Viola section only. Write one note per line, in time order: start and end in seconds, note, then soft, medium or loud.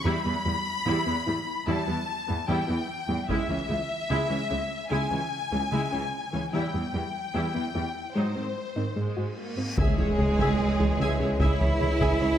0.05 0.24 G3 medium
0.05 0.24 E4 medium
0.25 0.33 E3 soft
0.25 0.33 B3 soft
0.45 0.54 E3 soft
0.45 0.53 G3 soft
0.86 1.05 G3 medium
0.86 1.05 E4 medium
1.06 1.14 E3 medium
1.06 1.14 B3 medium
1.26 1.34 E3 soft
1.26 1.35 G3 soft
1.67 1.86 G3 soft
1.67 1.86 E4 medium
1.87 1.95 E3 soft
1.87 1.95 B3 soft
2.27 2.35 E3 soft
2.27 2.36 B3 soft
2.48 2.67 G3 medium
2.48 2.67 E4 soft
2.68 2.76 E3 soft
2.68 2.76 B3 soft
3.08 3.16 E3 soft
3.08 3.17 B3 soft
3.29 3.48 G#3 medium
3.29 3.48 E4 medium
3.49 3.57 E3 soft
3.49 3.57 C#4 soft
3.69 3.77 C#3 soft
3.69 3.77 G#3 soft
4.10 4.29 G#3 medium
4.10 4.29 E4 medium
4.29 4.37 E3 soft
4.29 4.37 C#4 soft
4.50 4.58 C#3 soft
4.50 4.58 G#3 soft
4.90 5.10 G#3 medium
4.90 5.10 E4 medium
5.11 5.19 E3 soft
5.11 5.19 C#4 soft
5.52 5.60 E3 soft
5.52 5.60 C#4 soft
5.71 5.91 G#3 medium
5.71 5.91 E4 soft
5.92 6.01 E3 soft
5.92 6.00 C#4 soft
6.33 6.41 E3 soft
6.33 6.41 C#4 soft
6.53 6.72 G3 soft
6.53 6.72 E4 soft
6.74 6.82 E3 soft
6.74 6.82 B3 soft
6.94 7.02 E3 soft
6.94 7.02 G3 soft
7.34 7.53 G3 medium
7.34 7.53 E4 soft
7.54 7.62 E3 soft
7.54 7.62 B3 soft
7.75 7.83 E3 soft
7.75 7.83 G3 soft
8.16 8.35 F#3 soft
8.16 8.35 D#4 soft
8.36 8.44 D#3 soft
8.36 8.44 C4 soft
8.76 8.84 D#3 soft
8.76 8.84 C4 soft
8.96 9.34 G#3 soft
9.38 9.77 A#3 soft
9.78 9.97 G#4 soft
9.78 9.97 E5 soft
9.99 10.07 G#4 soft
9.99 10.07 C#5 soft
10.19 10.27 G#4 soft
10.40 10.58 G#4 medium
10.40 10.58 E5 soft
10.80 10.88 G#4 soft
11.00 11.19 G#4 medium
11.00 11.19 E5 soft
11.21 11.29 G#4 soft
11.21 11.29 C#5 soft
11.40 11.59 G#4 medium
11.40 11.59 E5 medium
11.61 11.69 G#4 soft
11.61 11.69 C#5 soft
11.80 11.88 G#4 soft
12.00 12.19 G#4 medium
12.00 12.20 E5 medium
12.20 12.28 G#4 soft
12.20 12.28 C#5 soft